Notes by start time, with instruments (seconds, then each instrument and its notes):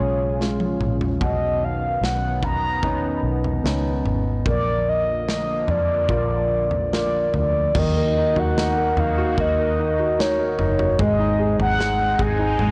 Already playing: grand piano C#3 G#3 C#4 F4, analog synth pad C#3 C#4 F4 G#4, soft synth lead C#5
0.00 fingered electric bass B1
0.40 grand piano G#3 C#4 F4, snare
0.60 high tom
0.80 fingered electric bass A#1, mid tom
1.01 floor tom
1.21 fingered electric bass B1, grand piano B2, analog synth pad D#3 B3, soft synth lead D#5, kick, floor tom
1.64 soft synth lead F5
2.01 fingered electric bass B1, soft synth lead F#5, snare
2.43 soft synth lead A#5, kick, floor tom
2.83 grand piano B3 C#4 D#4, kick, floor tom
3.23 fingered electric bass B1
3.44 floor tom
3.64 fingered electric bass C#2, grand piano B3 C#4 D#4, snare
4.05 fingered electric bass G#1, floor tom
4.46 fingered electric bass A#1, analog synth pad D3 F3 A#3, grand piano A#3, soft synth lead D5, kick, floor tom
4.89 soft synth lead D#5
5.29 snare
5.68 fingered electric bass F2, soft synth lead D5, floor tom
6.09 fingered electric bass A#1, grand piano F4 A#4 D5, kick, floor tom
6.71 floor tom
6.93 grand piano F4 A#4 D5, soft synth lead D5, snare
7.34 fingered electric bass D2, soft synth lead D5, floor tom
7.75 fingered electric bass D#2, analog synth pad D#3 A#3 D#4 F#4, grand piano D#3, soft synth lead D#5, kick, floor tom, crash
7.97 grand piano A#3
8.17 grand piano D#4
8.36 fingered electric bass D#2, grand piano F#4, soft synth lead F#5, floor tom
8.57 grand piano D#4, snare
8.77 grand piano A#4
8.97 fingered electric bass D#2, grand piano D#4, soft synth lead F5, floor tom
9.18 grand piano F#4
9.38 fingered electric bass D#2, grand piano A#3, soft synth lead D#5, kick, floor tom
9.59 grand piano A#4
9.79 grand piano D#4
9.99 grand piano F#4
10.19 grand piano D#4, soft synth lead C#5, snare
10.39 grand piano A#4
10.59 fingered electric bass F#1, grand piano D#4, floor tom
10.79 grand piano F#4, floor tom
10.99 fingered electric bass G#1, grand piano G#3, analog synth pad G#3 C4 D#4, soft synth lead D#5, kick, floor tom
11.19 grand piano D#4
11.39 grand piano G#4
11.59 fingered electric bass G#1, grand piano D#4, soft synth lead F#5, floor tom
11.79 grand piano G#4, snare
11.99 grand piano G#3
12.19 fingered electric bass G#1, grand piano G#4, soft synth lead G#5, kick, floor tom
12.39 grand piano D#4
12.59 fingered electric bass G#1, grand piano G#3, soft synth lead G#5, floor tom